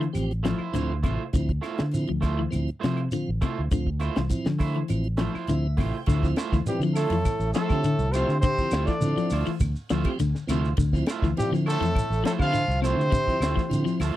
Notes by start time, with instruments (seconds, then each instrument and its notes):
0.01 clean electric guitar E3, closed hi-hat
0.13 fingered electric bass A1, tonewheel organ F3 C4 G4, closed hi-hat, claves, shekere
0.31 closed hi-hat
0.43 clean electric guitar F3 A3 E4 F4 C5, snare, closed hi-hat, shekere
0.59 clean electric guitar E4 C5, muted fingered electric bass stroke, claves
0.73 fingered electric bass D2, clean electric guitar D3 A3 E4 F4 C5, tonewheel organ F3 C4 E4, closed hi-hat, shekere
1.03 fingered electric bass A1, clean electric guitar C3 A3 E4 F4 C5, kick, closed hi-hat, claves, shekere
1.33 fingered electric bass D2, clean electric guitar D3, tonewheel organ F3 C4 E4, kick, closed hi-hat, shekere
1.49 kick, closed hi-hat
1.61 clean electric guitar A3 E4 F4 C5, snare, closed hi-hat, claves, shekere
1.78 fingered electric bass D3, muted clean electric guitar stroke, snare, closed hi-hat
1.91 tonewheel organ F3 C4 E4, closed hi-hat, shekere
2.08 fingered electric bass D2, clean electric guitar F3, closed hi-hat
2.21 clean electric guitar A3 E4 F4 C5, kick, snare, closed hi-hat, claves, shekere
2.39 clean electric guitar E3
2.51 tonewheel organ F3 C4 E4, closed hi-hat, claves, shekere
2.55 fingered electric bass D2
2.68 closed hi-hat
2.80 fingered electric bass C3, clean electric guitar A3 E4 F4 C5, closed hi-hat, shekere
2.84 clean electric guitar F3, snare
2.97 closed hi-hat, claves
3.11 clean electric guitar D3, tonewheel organ F3 C4 F4, closed hi-hat, shekere
3.29 fingered electric bass A1
3.41 clean electric guitar C3 A3 E4 F4 C5, muted fingered electric bass stroke, kick, closed hi-hat, claves, shekere
3.59 fingered electric bass D2
3.71 fingered electric bass D2, clean electric guitar D3, tonewheel organ F3 C4 F4, kick, closed hi-hat, shekere
3.87 kick
4.00 clean electric guitar A3 E4 F4 C5, closed hi-hat, claves, shekere
4.16 fingered electric bass C2, clean electric guitar E3, snare, closed hi-hat
4.29 tonewheel organ F3 C4 E4, kick, closed hi-hat, shekere
4.45 fingered electric bass D3, clean electric guitar F3, snare, closed hi-hat
4.59 clean electric guitar A3 E4 C5, muted clean electric guitar stroke, kick, snare, open hi-hat, claves, shekere
4.74 clean electric guitar E3, closed hi-hat
4.88 fingered electric bass A1, tonewheel organ F3 C4 E4, closed hi-hat, claves, shekere
5.04 closed hi-hat
5.17 clean electric guitar F3 A3 E4 F4 C5, snare, closed hi-hat, shekere
5.32 clean electric guitar E4 F4 C5, muted fingered electric bass stroke, snare, claves
5.47 fingered electric bass D2, clean electric guitar D3, tonewheel organ F3 C4 E4 E5, closed hi-hat, shekere
5.77 fingered electric bass A1, clean electric guitar C3 A3 E4 F4 C5, tonewheel organ G5, kick, open hi-hat, claves, shekere
6.06 fingered electric bass D2, clean electric guitar D3 A3 E4 F4 C5, kick, ride bell, shekere
6.23 tonewheel organ F3 C4 E4, kick, shekere
6.36 clean electric guitar A3 E4 F4 C5, snare, ride bell, claves, shekere
6.52 fingered electric bass D2, clean electric guitar E3, kick, snare, shekere
6.65 trombone section G2, tonewheel organ F3 C4 E4, trombone G3, trumpet G4, muted fingered electric bass stroke, ride bell, shekere
6.80 fingered electric bass D3, clean electric guitar F3, shekere
6.95 trombone section A2, clean electric guitar A3 E4 F4, trombone A3, trumpet A4, open hi-hat, claves, shekere
7.10 fingered electric bass F2, clean electric guitar E3, ride bell, shekere
7.25 kick, ride bell, claves, shekere
7.40 fingered electric bass A1, shekere
7.53 trombone section A2, clean electric guitar F3 A3 E4 F4 C5, trombone A3, trumpet A4, snare, ride bell, shekere
7.69 fingered electric bass D3, tonewheel organ F3 C4 G4, kick, snare, claves, shekere
7.84 clean electric guitar D3, ride bell, shekere
7.99 fingered electric bass C2, shekere
8.10 trombone section C3, trombone C4, trumpet C5, ride bell, claves, shekere
8.14 tonewheel organ F3 C4 F4, clean electric guitar A3 E4 F4 C5
8.29 fingered electric bass D3, shekere
8.40 trombone section C3, clean electric guitar D3, trombone C4, trumpet C5, kick, ride bell, shekere
8.58 tonewheel organ F3 C4 E4, muted fingered electric bass stroke, kick, shekere
8.71 fingered electric bass D2, clean electric guitar A3 E4 F4 C5, snare, ride bell, claves, shekere
8.86 trombone section D3, clean electric guitar E3, trombone D4, trumpet D5, kick, snare, shekere
9.01 fingered electric bass D3, tonewheel organ F3 C4 E4, ride bell, shekere
9.17 clean electric guitar F3, muted fingered electric bass stroke, snare, shekere
9.30 fingered electric bass D2, clean electric guitar A3 E4 F4 C5, open hi-hat, claves, shekere
9.46 clean electric guitar E3, muted fingered electric bass stroke, shekere
9.60 fingered electric bass D2, kick, ride bell, claves, shekere
9.76 shekere
9.89 fingered electric bass D2, clean electric guitar F3 A3 E4 F4 C5, snare, ride bell, shekere
10.04 tonewheel organ F3 C4 G4, kick, ride bell, claves, shekere
10.19 fingered electric bass D2, clean electric guitar D3, snare, ride bell, shekere
10.35 snare, shekere
10.47 fingered electric bass D2, clean electric guitar C3 A3 E4 F4, tonewheel organ F3 C4 E4, ride bell, claves, shekere
10.52 clean electric guitar C5
10.65 shekere
10.77 fingered electric bass D2, clean electric guitar D3, kick, ride bell, shekere
10.93 tonewheel organ F3 C4 E4, kick, snare, shekere
11.06 clean electric guitar A3 E4, snare, ride bell, claves, shekere
11.10 clean electric guitar F4 C5
11.22 fingered electric bass D2, clean electric guitar E3, kick, snare, shekere
11.37 trombone section G2, tonewheel organ F3 C4 E4, trombone G3, trumpet G4, muted fingered electric bass stroke, snare, ride bell, shekere
11.52 fingered electric bass D3, clean electric guitar F3, snare, shekere
11.66 trombone section A2, clean electric guitar A3 E4 F4 C5, trombone A3, trumpet A4, open hi-hat, claves, shekere
11.81 fingered electric bass F2, clean electric guitar E3, ride bell
11.85 shekere
11.95 kick, ride bell, claves, shekere
12.10 fingered electric bass A1, shekere
12.24 trombone section A2, clean electric guitar F3 A3 E4 F4 C5, trombone A3, trumpet A4, snare, ride bell, shekere
12.38 fingered electric bass D3, tonewheel organ F3 C4 G4, trombone section F3, clean electric guitar E4 F4 C5, trombone F4, trumpet F5, kick, claves, shekere
12.53 clean electric guitar D3, ride bell, shekere
12.68 fingered electric bass C2, shekere
12.82 clean electric guitar C3 A3 E4 F4 C5, trombone section C3, tonewheel organ F3 C4 E4, trombone C4, trumpet C5, ride bell, claves, shekere
12.97 fingered electric bass D3
13.01 shekere
13.12 clean electric guitar D3, kick, ride bell, shekere
13.27 tonewheel organ F3 C4 E4, muted fingered electric bass stroke, kick, shekere
13.41 fingered electric bass D2, clean electric guitar A3 E4 F4 C5, snare, ride bell, claves, shekere
13.56 clean electric guitar E3, kick, snare, shekere
13.69 fingered electric bass D3, tonewheel organ F3 C4 E4, ride bell, shekere
13.85 clean electric guitar F3, muted fingered electric bass stroke, snare, shekere
14.00 fingered electric bass D2, clean electric guitar A3 E4 F4 C5, tonewheel organ A5, open hi-hat, claves, shekere